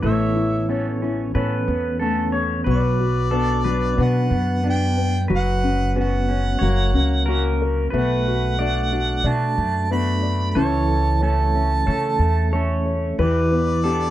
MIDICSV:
0, 0, Header, 1, 6, 480
1, 0, Start_track
1, 0, Key_signature, 2, "minor"
1, 0, Tempo, 657895
1, 27, Time_signature, 4, 2, 24, 8
1, 10290, End_track
2, 0, Start_track
2, 0, Title_t, "Harmonica"
2, 0, Program_c, 0, 22
2, 41, Note_on_c, 0, 76, 63
2, 484, Note_off_c, 0, 76, 0
2, 1975, Note_on_c, 0, 74, 81
2, 2935, Note_on_c, 0, 78, 81
2, 2946, Note_off_c, 0, 74, 0
2, 3400, Note_off_c, 0, 78, 0
2, 3427, Note_on_c, 0, 79, 90
2, 3857, Note_off_c, 0, 79, 0
2, 3912, Note_on_c, 0, 78, 88
2, 4339, Note_off_c, 0, 78, 0
2, 4388, Note_on_c, 0, 78, 80
2, 5539, Note_off_c, 0, 78, 0
2, 5822, Note_on_c, 0, 78, 75
2, 6765, Note_on_c, 0, 81, 83
2, 6776, Note_off_c, 0, 78, 0
2, 7237, Note_off_c, 0, 81, 0
2, 7240, Note_on_c, 0, 83, 76
2, 7633, Note_off_c, 0, 83, 0
2, 7665, Note_on_c, 0, 83, 55
2, 7719, Note_on_c, 0, 81, 90
2, 7730, Note_off_c, 0, 83, 0
2, 8188, Note_off_c, 0, 81, 0
2, 8193, Note_on_c, 0, 81, 78
2, 9359, Note_off_c, 0, 81, 0
2, 9628, Note_on_c, 0, 74, 85
2, 10290, Note_off_c, 0, 74, 0
2, 10290, End_track
3, 0, Start_track
3, 0, Title_t, "Pedal steel guitar"
3, 0, Program_c, 1, 26
3, 0, Note_on_c, 1, 71, 61
3, 19, Note_on_c, 1, 73, 68
3, 76, Note_off_c, 1, 71, 0
3, 981, Note_off_c, 1, 73, 0
3, 984, Note_on_c, 1, 71, 69
3, 1456, Note_on_c, 1, 69, 64
3, 1479, Note_off_c, 1, 71, 0
3, 1695, Note_on_c, 1, 73, 71
3, 1708, Note_off_c, 1, 69, 0
3, 1926, Note_off_c, 1, 73, 0
3, 1928, Note_on_c, 1, 71, 67
3, 2415, Note_on_c, 1, 69, 74
3, 2431, Note_off_c, 1, 71, 0
3, 2656, Note_off_c, 1, 69, 0
3, 2659, Note_on_c, 1, 71, 75
3, 3833, Note_off_c, 1, 71, 0
3, 3854, Note_on_c, 1, 71, 72
3, 4791, Note_off_c, 1, 71, 0
3, 4806, Note_on_c, 1, 73, 75
3, 5292, Note_off_c, 1, 73, 0
3, 5295, Note_on_c, 1, 70, 72
3, 5764, Note_off_c, 1, 70, 0
3, 5767, Note_on_c, 1, 71, 70
3, 6266, Note_on_c, 1, 74, 77
3, 6272, Note_off_c, 1, 71, 0
3, 7699, Note_on_c, 1, 73, 78
3, 7750, Note_off_c, 1, 74, 0
3, 8660, Note_on_c, 1, 69, 73
3, 8691, Note_off_c, 1, 73, 0
3, 9141, Note_on_c, 1, 73, 78
3, 9157, Note_off_c, 1, 69, 0
3, 9620, Note_off_c, 1, 73, 0
3, 9623, Note_on_c, 1, 71, 73
3, 10073, Note_off_c, 1, 71, 0
3, 10096, Note_on_c, 1, 69, 67
3, 10290, Note_off_c, 1, 69, 0
3, 10290, End_track
4, 0, Start_track
4, 0, Title_t, "Grand piano"
4, 0, Program_c, 2, 0
4, 0, Control_c, 2, 64, 127
4, 28, Note_on_c, 2, 57, 51
4, 37, Control_c, 2, 64, 0
4, 178, Control_c, 2, 64, 127
4, 261, Note_on_c, 2, 64, 40
4, 503, Note_on_c, 2, 73, 45
4, 735, Note_off_c, 2, 64, 0
4, 746, Note_on_c, 2, 64, 44
4, 980, Note_off_c, 2, 73, 0
4, 991, Note_on_c, 2, 73, 48
4, 1462, Note_off_c, 2, 57, 0
4, 1473, Note_on_c, 2, 57, 46
4, 1676, Note_off_c, 2, 64, 0
4, 1690, Note_off_c, 2, 73, 0
4, 1701, Note_on_c, 2, 73, 35
4, 1935, Note_off_c, 2, 57, 0
4, 1936, Note_off_c, 2, 73, 0
4, 1946, Note_on_c, 2, 59, 54
4, 1954, Control_c, 2, 64, 0
4, 2079, Control_c, 2, 64, 127
4, 2191, Note_on_c, 2, 66, 41
4, 2411, Note_off_c, 2, 59, 0
4, 2422, Note_on_c, 2, 59, 42
4, 2662, Note_on_c, 2, 54, 45
4, 2895, Note_off_c, 2, 59, 0
4, 2906, Note_on_c, 2, 59, 47
4, 3119, Note_off_c, 2, 66, 0
4, 3398, Note_on_c, 2, 62, 47
4, 3595, Note_off_c, 2, 54, 0
4, 3619, Note_off_c, 2, 59, 0
4, 3629, Note_on_c, 2, 59, 40
4, 3858, Note_off_c, 2, 62, 0
4, 3860, Note_off_c, 2, 59, 0
4, 3867, Note_on_c, 2, 54, 53
4, 3874, Control_c, 2, 64, 0
4, 4025, Control_c, 2, 64, 127
4, 4113, Note_on_c, 2, 61, 42
4, 4352, Note_on_c, 2, 71, 43
4, 4594, Note_on_c, 2, 73, 46
4, 4798, Note_off_c, 2, 54, 0
4, 4808, Note_off_c, 2, 61, 0
4, 4815, Note_off_c, 2, 71, 0
4, 4823, Note_off_c, 2, 73, 0
4, 4832, Note_on_c, 2, 54, 54
4, 4834, Control_c, 2, 64, 0
4, 4952, Control_c, 2, 64, 127
4, 5065, Note_on_c, 2, 61, 43
4, 5315, Note_on_c, 2, 66, 46
4, 5558, Note_on_c, 2, 70, 41
4, 5762, Note_off_c, 2, 54, 0
4, 5765, Note_off_c, 2, 61, 0
4, 5777, Note_off_c, 2, 66, 0
4, 5786, Note_off_c, 2, 70, 0
4, 5788, Note_on_c, 2, 59, 50
4, 5798, Control_c, 2, 64, 0
4, 5946, Control_c, 2, 64, 127
4, 6040, Note_on_c, 2, 66, 41
4, 6285, Note_on_c, 2, 74, 45
4, 6501, Note_off_c, 2, 66, 0
4, 6512, Note_on_c, 2, 66, 43
4, 6731, Note_off_c, 2, 74, 0
4, 6742, Note_on_c, 2, 74, 48
4, 7217, Note_off_c, 2, 59, 0
4, 7228, Note_on_c, 2, 59, 45
4, 7441, Note_off_c, 2, 66, 0
4, 7451, Note_off_c, 2, 74, 0
4, 7462, Note_on_c, 2, 74, 36
4, 7693, Note_off_c, 2, 59, 0
4, 7697, Note_off_c, 2, 74, 0
4, 7706, Note_on_c, 2, 61, 57
4, 7716, Control_c, 2, 64, 0
4, 7852, Control_c, 2, 64, 127
4, 7934, Note_on_c, 2, 69, 40
4, 8178, Note_on_c, 2, 73, 44
4, 8424, Note_on_c, 2, 76, 45
4, 8642, Note_off_c, 2, 73, 0
4, 8653, Note_on_c, 2, 73, 47
4, 8870, Note_off_c, 2, 69, 0
4, 9128, Note_off_c, 2, 76, 0
4, 9139, Note_on_c, 2, 76, 48
4, 9369, Note_off_c, 2, 73, 0
4, 9380, Note_on_c, 2, 73, 40
4, 9595, Note_off_c, 2, 61, 0
4, 9607, Note_off_c, 2, 76, 0
4, 9615, Note_off_c, 2, 73, 0
4, 9625, Note_on_c, 2, 52, 58
4, 9633, Control_c, 2, 64, 0
4, 9773, Control_c, 2, 64, 127
4, 9862, Note_on_c, 2, 59, 42
4, 10103, Note_on_c, 2, 67, 48
4, 10290, Note_off_c, 2, 52, 0
4, 10290, Note_off_c, 2, 59, 0
4, 10290, Note_off_c, 2, 67, 0
4, 10290, End_track
5, 0, Start_track
5, 0, Title_t, "Clean electric guitar"
5, 0, Program_c, 3, 27
5, 0, Note_on_c, 3, 59, 47
5, 0, Note_on_c, 3, 62, 47
5, 23, Note_on_c, 3, 52, 63
5, 29, Note_on_c, 3, 69, 49
5, 78, Note_off_c, 3, 62, 0
5, 499, Note_off_c, 3, 59, 0
5, 501, Note_off_c, 3, 69, 0
5, 502, Note_on_c, 3, 59, 45
5, 506, Note_on_c, 3, 61, 43
5, 510, Note_on_c, 3, 69, 45
5, 735, Note_off_c, 3, 61, 0
5, 744, Note_on_c, 3, 61, 46
5, 977, Note_off_c, 3, 61, 0
5, 979, Note_off_c, 3, 59, 0
5, 982, Note_on_c, 3, 59, 49
5, 984, Note_off_c, 3, 69, 0
5, 986, Note_on_c, 3, 61, 47
5, 992, Note_on_c, 3, 69, 49
5, 1221, Note_off_c, 3, 59, 0
5, 1224, Note_on_c, 3, 59, 51
5, 1462, Note_off_c, 3, 59, 0
5, 1462, Note_off_c, 3, 61, 0
5, 1465, Note_on_c, 3, 59, 45
5, 1466, Note_off_c, 3, 69, 0
5, 1471, Note_on_c, 3, 61, 46
5, 1474, Note_on_c, 3, 69, 50
5, 1943, Note_off_c, 3, 52, 0
5, 1948, Note_on_c, 3, 54, 57
5, 1949, Note_off_c, 3, 69, 0
5, 1952, Note_on_c, 3, 66, 50
5, 1993, Note_off_c, 3, 59, 0
5, 1996, Note_off_c, 3, 61, 0
5, 2420, Note_on_c, 3, 59, 48
5, 2424, Note_on_c, 3, 62, 45
5, 2428, Note_off_c, 3, 66, 0
5, 2431, Note_on_c, 3, 66, 48
5, 2655, Note_off_c, 3, 62, 0
5, 2663, Note_on_c, 3, 62, 44
5, 2890, Note_off_c, 3, 59, 0
5, 2893, Note_off_c, 3, 62, 0
5, 2898, Note_on_c, 3, 59, 46
5, 2901, Note_on_c, 3, 62, 48
5, 2903, Note_off_c, 3, 66, 0
5, 2905, Note_on_c, 3, 66, 53
5, 3129, Note_off_c, 3, 59, 0
5, 3138, Note_on_c, 3, 59, 50
5, 3375, Note_off_c, 3, 59, 0
5, 3377, Note_off_c, 3, 62, 0
5, 3383, Note_on_c, 3, 59, 53
5, 3387, Note_on_c, 3, 62, 53
5, 3862, Note_off_c, 3, 54, 0
5, 3865, Note_on_c, 3, 54, 56
5, 3866, Note_off_c, 3, 66, 0
5, 3868, Note_on_c, 3, 66, 54
5, 3913, Note_off_c, 3, 59, 0
5, 3913, Note_off_c, 3, 62, 0
5, 4346, Note_on_c, 3, 59, 47
5, 4348, Note_on_c, 3, 61, 47
5, 4353, Note_off_c, 3, 66, 0
5, 4356, Note_on_c, 3, 66, 49
5, 4577, Note_off_c, 3, 61, 0
5, 4586, Note_on_c, 3, 61, 49
5, 4826, Note_off_c, 3, 59, 0
5, 4833, Note_on_c, 3, 58, 59
5, 4874, Note_off_c, 3, 54, 0
5, 4874, Note_off_c, 3, 61, 0
5, 4879, Note_off_c, 3, 66, 0
5, 5061, Note_off_c, 3, 58, 0
5, 5070, Note_on_c, 3, 58, 48
5, 5304, Note_off_c, 3, 58, 0
5, 5313, Note_on_c, 3, 58, 47
5, 5319, Note_on_c, 3, 61, 49
5, 5321, Note_on_c, 3, 66, 51
5, 5784, Note_off_c, 3, 66, 0
5, 5786, Note_off_c, 3, 58, 0
5, 5789, Note_on_c, 3, 57, 59
5, 5795, Note_on_c, 3, 66, 51
5, 5842, Note_off_c, 3, 61, 0
5, 6268, Note_off_c, 3, 57, 0
5, 6271, Note_off_c, 3, 66, 0
5, 6271, Note_on_c, 3, 57, 45
5, 6276, Note_on_c, 3, 62, 45
5, 6281, Note_on_c, 3, 66, 50
5, 6504, Note_off_c, 3, 62, 0
5, 6513, Note_on_c, 3, 62, 47
5, 6745, Note_off_c, 3, 62, 0
5, 6746, Note_off_c, 3, 57, 0
5, 6749, Note_on_c, 3, 57, 47
5, 6750, Note_off_c, 3, 66, 0
5, 6754, Note_on_c, 3, 62, 46
5, 6759, Note_on_c, 3, 66, 56
5, 6980, Note_off_c, 3, 57, 0
5, 6988, Note_on_c, 3, 57, 46
5, 7222, Note_off_c, 3, 57, 0
5, 7228, Note_off_c, 3, 62, 0
5, 7231, Note_on_c, 3, 57, 48
5, 7232, Note_off_c, 3, 66, 0
5, 7236, Note_on_c, 3, 62, 47
5, 7241, Note_on_c, 3, 66, 53
5, 7705, Note_off_c, 3, 66, 0
5, 7705, Note_on_c, 3, 52, 64
5, 7708, Note_on_c, 3, 69, 49
5, 7757, Note_off_c, 3, 57, 0
5, 7760, Note_off_c, 3, 62, 0
5, 8184, Note_off_c, 3, 69, 0
5, 8185, Note_on_c, 3, 57, 46
5, 8190, Note_on_c, 3, 61, 44
5, 8193, Note_on_c, 3, 69, 52
5, 8418, Note_off_c, 3, 61, 0
5, 8427, Note_on_c, 3, 61, 48
5, 8655, Note_off_c, 3, 57, 0
5, 8661, Note_off_c, 3, 61, 0
5, 8664, Note_on_c, 3, 57, 54
5, 8666, Note_off_c, 3, 69, 0
5, 8670, Note_on_c, 3, 61, 50
5, 8675, Note_on_c, 3, 69, 54
5, 8897, Note_off_c, 3, 57, 0
5, 8906, Note_on_c, 3, 57, 51
5, 9140, Note_off_c, 3, 57, 0
5, 9147, Note_off_c, 3, 61, 0
5, 9148, Note_off_c, 3, 69, 0
5, 9149, Note_on_c, 3, 57, 50
5, 9153, Note_on_c, 3, 61, 49
5, 9160, Note_on_c, 3, 69, 55
5, 9619, Note_off_c, 3, 52, 0
5, 9628, Note_on_c, 3, 52, 66
5, 9630, Note_off_c, 3, 69, 0
5, 9634, Note_on_c, 3, 67, 51
5, 9674, Note_off_c, 3, 57, 0
5, 9677, Note_off_c, 3, 61, 0
5, 10101, Note_off_c, 3, 67, 0
5, 10102, Note_on_c, 3, 59, 49
5, 10106, Note_on_c, 3, 62, 49
5, 10109, Note_on_c, 3, 67, 54
5, 10290, Note_off_c, 3, 52, 0
5, 10290, Note_off_c, 3, 59, 0
5, 10290, Note_off_c, 3, 62, 0
5, 10290, Note_off_c, 3, 67, 0
5, 10290, End_track
6, 0, Start_track
6, 0, Title_t, "Upright bass"
6, 0, Program_c, 4, 32
6, 22, Note_on_c, 4, 33, 75
6, 955, Note_off_c, 4, 33, 0
6, 984, Note_on_c, 4, 45, 78
6, 1209, Note_off_c, 4, 45, 0
6, 1225, Note_on_c, 4, 40, 68
6, 1916, Note_off_c, 4, 40, 0
6, 1944, Note_on_c, 4, 35, 80
6, 2875, Note_off_c, 4, 35, 0
6, 2905, Note_on_c, 4, 47, 73
6, 3129, Note_off_c, 4, 47, 0
6, 3143, Note_on_c, 4, 42, 74
6, 3835, Note_off_c, 4, 42, 0
6, 3866, Note_on_c, 4, 30, 73
6, 4797, Note_off_c, 4, 30, 0
6, 4826, Note_on_c, 4, 30, 70
6, 5050, Note_off_c, 4, 30, 0
6, 5058, Note_on_c, 4, 37, 69
6, 5754, Note_off_c, 4, 37, 0
6, 5791, Note_on_c, 4, 35, 72
6, 6721, Note_off_c, 4, 35, 0
6, 6739, Note_on_c, 4, 47, 67
6, 6968, Note_off_c, 4, 47, 0
6, 6989, Note_on_c, 4, 42, 74
6, 7679, Note_off_c, 4, 42, 0
6, 7703, Note_on_c, 4, 37, 77
6, 8635, Note_off_c, 4, 37, 0
6, 8665, Note_on_c, 4, 49, 78
6, 8890, Note_off_c, 4, 49, 0
6, 8894, Note_on_c, 4, 40, 74
6, 9589, Note_off_c, 4, 40, 0
6, 9621, Note_on_c, 4, 40, 77
6, 10290, Note_off_c, 4, 40, 0
6, 10290, End_track
0, 0, End_of_file